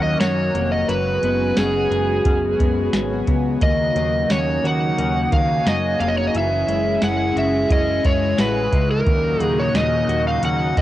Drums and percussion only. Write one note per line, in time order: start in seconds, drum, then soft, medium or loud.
0.21 snare loud
0.21 closed hi-hat medium
0.21 tambourine medium
0.55 closed hi-hat medium
0.89 closed hi-hat medium
1.23 closed hi-hat medium
1.57 snare loud
1.57 closed hi-hat medium
1.57 tambourine medium
1.92 closed hi-hat soft
2.25 kick loud
2.25 closed hi-hat medium
2.60 kick medium
2.60 closed hi-hat medium
2.93 snare loud
2.93 closed hi-hat medium
2.93 tambourine medium
3.27 kick medium
3.27 closed hi-hat medium
3.61 kick loud
3.61 closed hi-hat medium
3.96 closed hi-hat medium
4.30 snare loud
4.30 closed hi-hat medium
4.30 tambourine medium
4.65 closed hi-hat soft
4.98 closed hi-hat medium
5.32 kick loud
5.32 closed hi-hat medium
5.66 snare loud
5.66 closed hi-hat medium
5.66 tambourine medium
6.00 closed hi-hat medium
6.35 closed hi-hat medium
6.69 closed hi-hat medium
7.02 snare loud
7.02 closed hi-hat medium
7.02 tambourine medium
7.37 closed hi-hat soft
7.70 kick loud
7.70 closed hi-hat medium
8.05 kick loud
8.05 closed hi-hat medium
8.38 snare loud
8.38 closed hi-hat medium
8.38 tambourine medium
8.72 kick medium
8.72 closed hi-hat medium
9.07 kick loud
9.07 closed hi-hat medium
9.41 closed hi-hat medium
9.75 snare loud
9.75 closed hi-hat medium
9.75 tambourine medium
10.09 closed hi-hat medium
10.43 closed hi-hat medium
10.77 kick medium
10.77 closed hi-hat soft